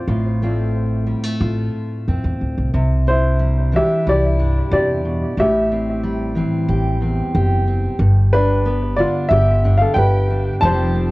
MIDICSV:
0, 0, Header, 1, 4, 480
1, 0, Start_track
1, 0, Tempo, 657895
1, 63, Time_signature, 4, 2, 24, 8
1, 8107, End_track
2, 0, Start_track
2, 0, Title_t, "Upright piano"
2, 0, Program_c, 0, 0
2, 0, Note_on_c, 0, 65, 48
2, 0, Note_on_c, 0, 72, 60
2, 755, Note_off_c, 0, 72, 0
2, 764, Note_off_c, 0, 65, 0
2, 2247, Note_on_c, 0, 72, 78
2, 2262, Note_on_c, 0, 64, 60
2, 2702, Note_off_c, 0, 64, 0
2, 2738, Note_off_c, 0, 72, 0
2, 2744, Note_on_c, 0, 76, 78
2, 2747, Note_on_c, 0, 67, 59
2, 2958, Note_off_c, 0, 67, 0
2, 2979, Note_off_c, 0, 76, 0
2, 2982, Note_on_c, 0, 67, 59
2, 2984, Note_on_c, 0, 74, 80
2, 3422, Note_off_c, 0, 67, 0
2, 3423, Note_off_c, 0, 74, 0
2, 3450, Note_on_c, 0, 74, 75
2, 3452, Note_on_c, 0, 67, 55
2, 3897, Note_off_c, 0, 67, 0
2, 3937, Note_on_c, 0, 67, 64
2, 3938, Note_on_c, 0, 76, 74
2, 3939, Note_off_c, 0, 74, 0
2, 4619, Note_off_c, 0, 67, 0
2, 4619, Note_off_c, 0, 76, 0
2, 6076, Note_on_c, 0, 71, 87
2, 6086, Note_on_c, 0, 62, 58
2, 6529, Note_off_c, 0, 62, 0
2, 6542, Note_on_c, 0, 74, 77
2, 6567, Note_off_c, 0, 71, 0
2, 6567, Note_on_c, 0, 65, 65
2, 6776, Note_on_c, 0, 76, 88
2, 6782, Note_off_c, 0, 65, 0
2, 6793, Note_off_c, 0, 74, 0
2, 6801, Note_on_c, 0, 67, 64
2, 7129, Note_off_c, 0, 67, 0
2, 7134, Note_on_c, 0, 77, 78
2, 7153, Note_off_c, 0, 76, 0
2, 7162, Note_on_c, 0, 69, 64
2, 7252, Note_off_c, 0, 77, 0
2, 7254, Note_on_c, 0, 79, 81
2, 7267, Note_off_c, 0, 69, 0
2, 7285, Note_on_c, 0, 71, 68
2, 7725, Note_off_c, 0, 71, 0
2, 7740, Note_on_c, 0, 81, 92
2, 7753, Note_off_c, 0, 79, 0
2, 7771, Note_on_c, 0, 72, 77
2, 8107, Note_off_c, 0, 72, 0
2, 8107, Note_off_c, 0, 81, 0
2, 8107, End_track
3, 0, Start_track
3, 0, Title_t, "Steel-string acoustic guitar"
3, 0, Program_c, 1, 25
3, 0, Note_on_c, 1, 60, 47
3, 57, Note_on_c, 1, 45, 63
3, 64, Note_on_c, 1, 65, 56
3, 304, Note_off_c, 1, 65, 0
3, 309, Note_off_c, 1, 60, 0
3, 309, Note_on_c, 1, 57, 45
3, 312, Note_on_c, 1, 60, 50
3, 318, Note_on_c, 1, 65, 52
3, 776, Note_off_c, 1, 57, 0
3, 779, Note_on_c, 1, 55, 49
3, 901, Note_off_c, 1, 55, 0
3, 901, Note_on_c, 1, 57, 45
3, 1016, Note_off_c, 1, 65, 0
3, 1025, Note_on_c, 1, 65, 56
3, 1510, Note_off_c, 1, 60, 0
3, 1519, Note_on_c, 1, 60, 49
3, 1965, Note_off_c, 1, 65, 0
3, 1970, Note_off_c, 1, 60, 0
3, 1993, Note_off_c, 1, 45, 0
3, 1993, Note_off_c, 1, 57, 0
3, 1997, Note_on_c, 1, 48, 65
3, 2241, Note_on_c, 1, 62, 47
3, 2476, Note_on_c, 1, 55, 51
3, 2712, Note_off_c, 1, 62, 0
3, 2714, Note_on_c, 1, 52, 54
3, 2719, Note_off_c, 1, 48, 0
3, 2721, Note_on_c, 1, 62, 52
3, 2968, Note_on_c, 1, 64, 59
3, 3198, Note_off_c, 1, 62, 0
3, 3199, Note_on_c, 1, 43, 55
3, 3207, Note_on_c, 1, 62, 55
3, 3445, Note_on_c, 1, 48, 57
3, 3681, Note_off_c, 1, 48, 0
3, 3684, Note_on_c, 1, 47, 53
3, 3888, Note_off_c, 1, 52, 0
3, 3891, Note_off_c, 1, 43, 0
3, 3894, Note_off_c, 1, 62, 0
3, 3922, Note_off_c, 1, 47, 0
3, 3925, Note_on_c, 1, 45, 70
3, 4170, Note_on_c, 1, 60, 49
3, 4398, Note_off_c, 1, 55, 0
3, 4401, Note_on_c, 1, 55, 55
3, 4632, Note_on_c, 1, 52, 52
3, 4633, Note_off_c, 1, 60, 0
3, 4642, Note_on_c, 1, 60, 56
3, 4877, Note_off_c, 1, 64, 0
3, 4879, Note_on_c, 1, 67, 57
3, 5112, Note_off_c, 1, 60, 0
3, 5112, Note_on_c, 1, 40, 59
3, 5120, Note_on_c, 1, 60, 48
3, 5121, Note_off_c, 1, 45, 0
3, 5360, Note_off_c, 1, 67, 0
3, 5363, Note_on_c, 1, 67, 60
3, 5590, Note_off_c, 1, 60, 0
3, 5599, Note_on_c, 1, 60, 50
3, 5802, Note_off_c, 1, 52, 0
3, 5808, Note_off_c, 1, 60, 0
3, 5827, Note_off_c, 1, 40, 0
3, 5830, Note_on_c, 1, 43, 70
3, 6086, Note_on_c, 1, 62, 60
3, 6311, Note_off_c, 1, 55, 0
3, 6314, Note_on_c, 1, 59, 59
3, 6547, Note_off_c, 1, 62, 0
3, 6552, Note_on_c, 1, 50, 57
3, 6556, Note_on_c, 1, 62, 58
3, 6794, Note_off_c, 1, 67, 0
3, 6797, Note_on_c, 1, 67, 62
3, 7027, Note_off_c, 1, 43, 0
3, 7031, Note_off_c, 1, 62, 0
3, 7037, Note_on_c, 1, 43, 54
3, 7043, Note_on_c, 1, 62, 52
3, 7264, Note_off_c, 1, 67, 0
3, 7272, Note_on_c, 1, 67, 65
3, 7509, Note_off_c, 1, 62, 0
3, 7518, Note_on_c, 1, 62, 54
3, 7718, Note_off_c, 1, 59, 0
3, 7719, Note_off_c, 1, 67, 0
3, 7721, Note_off_c, 1, 43, 0
3, 7722, Note_off_c, 1, 62, 0
3, 7746, Note_off_c, 1, 50, 0
3, 7753, Note_on_c, 1, 41, 71
3, 7755, Note_on_c, 1, 53, 53
3, 7760, Note_on_c, 1, 55, 56
3, 7765, Note_on_c, 1, 60, 54
3, 7770, Note_on_c, 1, 67, 71
3, 7983, Note_off_c, 1, 60, 0
3, 7992, Note_on_c, 1, 60, 54
3, 8107, Note_off_c, 1, 41, 0
3, 8107, Note_off_c, 1, 53, 0
3, 8107, Note_off_c, 1, 55, 0
3, 8107, Note_off_c, 1, 60, 0
3, 8107, Note_off_c, 1, 67, 0
3, 8107, End_track
4, 0, Start_track
4, 0, Title_t, "Upright bass"
4, 0, Program_c, 2, 32
4, 55, Note_on_c, 2, 33, 80
4, 822, Note_off_c, 2, 33, 0
4, 1026, Note_on_c, 2, 33, 86
4, 1218, Note_off_c, 2, 33, 0
4, 1516, Note_on_c, 2, 41, 67
4, 1623, Note_off_c, 2, 41, 0
4, 1635, Note_on_c, 2, 40, 71
4, 1743, Note_off_c, 2, 40, 0
4, 1760, Note_on_c, 2, 38, 55
4, 1866, Note_off_c, 2, 38, 0
4, 1881, Note_on_c, 2, 36, 65
4, 1987, Note_off_c, 2, 36, 0
4, 1998, Note_on_c, 2, 36, 77
4, 2760, Note_off_c, 2, 36, 0
4, 2967, Note_on_c, 2, 36, 78
4, 3344, Note_off_c, 2, 36, 0
4, 3440, Note_on_c, 2, 40, 88
4, 3820, Note_off_c, 2, 40, 0
4, 3919, Note_on_c, 2, 33, 74
4, 4678, Note_off_c, 2, 33, 0
4, 4876, Note_on_c, 2, 33, 81
4, 5255, Note_off_c, 2, 33, 0
4, 5360, Note_on_c, 2, 30, 87
4, 5737, Note_off_c, 2, 30, 0
4, 5829, Note_on_c, 2, 31, 84
4, 6587, Note_off_c, 2, 31, 0
4, 6790, Note_on_c, 2, 31, 88
4, 7168, Note_off_c, 2, 31, 0
4, 7269, Note_on_c, 2, 31, 87
4, 7647, Note_off_c, 2, 31, 0
4, 7752, Note_on_c, 2, 29, 88
4, 8107, Note_off_c, 2, 29, 0
4, 8107, End_track
0, 0, End_of_file